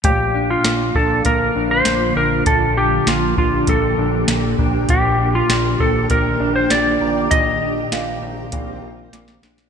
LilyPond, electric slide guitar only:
\new Staff \with { instrumentName = "Electric slide guitar" } { \time 4/4 \key bes \major \tempo 4 = 99 g'8. f'8. a'8 bes'8. c''8. bes'8 | a'8 g'8 f'8 f'8 a'4. r8 | g'8. f'8. a'8 bes'8. c''16 d''4 | ees''2. r4 | }